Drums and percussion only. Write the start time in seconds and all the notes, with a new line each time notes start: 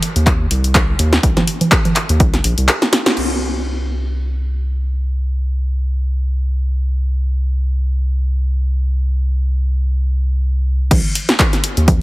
0.03 open hi-hat
0.16 closed hi-hat
0.27 kick, clap, closed hi-hat
0.51 open hi-hat
0.64 closed hi-hat
0.75 kick, clap, closed hi-hat
0.99 open hi-hat
1.13 snare, closed hi-hat
1.23 kick, closed hi-hat
1.37 snare, closed hi-hat, low conga
1.47 open hi-hat
1.61 closed hi-hat, low conga
1.72 kick, clap, closed hi-hat
1.85 closed hi-hat, low conga
1.96 clap, open hi-hat
2.09 closed hi-hat
2.20 kick, closed hi-hat
2.34 snare, closed hi-hat
2.44 open hi-hat
2.58 closed hi-hat
2.68 clap, closed hi-hat
2.82 snare, closed hi-hat
2.93 snare, open hi-hat
3.06 snare, closed hi-hat
3.17 crash
10.91 kick, closed hi-hat, crash, low conga
11.15 open hi-hat
11.29 snare, closed hi-hat
11.39 kick, clap, closed hi-hat
11.53 snare, closed hi-hat
11.64 open hi-hat
11.77 closed hi-hat
11.88 kick, closed hi-hat, low conga